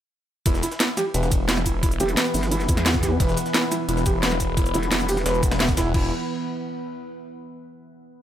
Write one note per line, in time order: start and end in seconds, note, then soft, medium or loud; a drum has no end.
0.46 0.62 E1 loud
0.46 5.90 E3 medium
0.46 5.90 B3 medium
0.46 0.54 E4 medium
0.46 5.90 B4 loud
0.46 kick loud
0.46 closed hi-hat medium
0.46 ride medium
0.54 snare soft
0.54 shaker soft
0.63 0.68 E4 medium
0.63 closed hi-hat medium
0.63 ride medium
0.63 shaker medium
0.71 snare soft
0.71 closed hi-hat soft
0.80 0.85 E4 medium
0.80 snare loud
0.80 closed hi-hat loud
0.80 ride medium
0.97 1.02 G4 loud
0.97 snare soft
0.97 closed hi-hat medium
0.97 ride medium
0.97 shaker medium
1.14 1.99 E1 loud
1.14 1.27 B4 medium
1.14 closed hi-hat medium
1.14 ride medium
1.23 snare soft
1.23 shaker soft
1.31 kick loud
1.31 closed hi-hat medium
1.31 ride medium
1.31 shaker medium
1.49 1.57 E4 medium
1.49 snare loud
1.49 closed hi-hat medium
1.49 ride medium
1.57 snare soft
1.57 snare medium
1.57 shaker soft
1.66 1.71 E4 medium
1.66 kick medium
1.66 closed hi-hat medium
1.66 ride medium
1.66 shaker medium
1.83 1.88 E4 medium
1.83 kick loud
1.83 closed hi-hat medium
1.83 ride medium
1.91 closed hi-hat soft
1.91 shaker soft
2.00 2.16 E1 loud
2.00 2.05 G4 loud
2.00 closed hi-hat medium
2.00 ride medium
2.00 shaker medium
2.09 closed hi-hat soft
2.09 ride soft
2.17 2.30 B4 medium
2.17 snare loud
2.17 closed hi-hat medium
2.17 ride medium
2.26 shaker soft
2.34 2.67 G1 loud
2.34 closed hi-hat medium
2.34 open hi-hat medium
2.34 shaker medium
2.43 snare medium
2.43 closed hi-hat soft
2.51 2.60 E4 medium
2.51 closed hi-hat loud
2.51 ride medium
2.60 snare soft
2.60 shaker soft
2.69 3.19 E2 medium
2.69 2.74 E4 medium
2.69 kick loud
2.69 closed hi-hat medium
2.69 ride medium
2.69 shaker medium
2.77 snare medium
2.77 closed hi-hat soft
2.77 ride soft
2.86 2.91 E4 medium
2.86 snare loud
2.86 closed hi-hat medium
2.86 ride medium
2.94 kick loud
2.94 ride soft
2.94 shaker soft
3.03 3.08 G4 loud
3.03 kick medium
3.03 snare soft
3.03 closed hi-hat medium
3.03 ride medium
3.03 shaker medium
3.20 3.36 E1 loud
3.20 3.32 B4 medium
3.20 kick loud
3.20 closed hi-hat medium
3.20 ride medium
3.29 snare soft
3.29 shaker soft
3.37 closed hi-hat medium
3.37 ride medium
3.37 shaker medium
3.46 snare soft
3.46 closed hi-hat soft
3.54 3.63 E4 medium
3.54 snare loud
3.54 closed hi-hat medium
3.54 ride medium
3.71 3.76 E4 medium
3.71 snare soft
3.71 closed hi-hat medium
3.71 ride medium
3.71 shaker medium
3.89 4.73 E1 loud
3.89 3.94 E4 medium
3.89 closed hi-hat loud
3.89 ride medium
3.97 snare soft
3.97 shaker soft
4.06 4.11 G4 loud
4.06 kick loud
4.06 closed hi-hat medium
4.06 ride medium
4.06 shaker medium
4.23 4.35 B4 medium
4.23 snare loud
4.23 closed hi-hat medium
4.23 ride medium
4.31 snare soft
4.31 snare medium
4.31 shaker soft
4.40 kick medium
4.40 closed hi-hat medium
4.40 ride medium
4.40 shaker medium
4.57 4.65 E4 medium
4.57 kick loud
4.57 closed hi-hat medium
4.57 ride medium
4.66 closed hi-hat soft
4.66 shaker soft
4.74 4.90 E1 loud
4.74 4.79 E4 medium
4.74 closed hi-hat medium
4.74 ride medium
4.74 shaker medium
4.83 closed hi-hat soft
4.83 ride soft
4.91 5.24 E1 medium
4.91 4.96 E4 medium
4.91 snare loud
4.91 closed hi-hat medium
4.91 ride medium
5.00 shaker soft
5.09 5.14 G4 loud
5.09 closed hi-hat medium
5.09 open hi-hat medium
5.09 shaker medium
5.17 snare medium
5.17 closed hi-hat soft
5.26 5.93 E1 loud
5.26 5.38 B4 medium
5.26 snare loud
5.26 closed hi-hat medium
5.26 ride medium
5.34 shaker soft
5.43 kick loud
5.43 closed hi-hat medium
5.43 ride medium
5.43 shaker medium
5.51 snare loud
5.51 snare soft
5.51 closed hi-hat soft
5.51 ride medium
5.60 5.65 E5 medium
5.60 snare loud
5.60 closed hi-hat medium
5.69 kick loud
5.69 ride medium
5.69 shaker soft
5.77 5.85 E4 loud
5.77 kick medium
5.77 snare loud
5.77 closed hi-hat medium
5.77 ride medium
5.77 shaker medium
5.94 6.10 E1 loud
5.94 6.10 E4 medium
5.94 kick loud
5.94 crash medium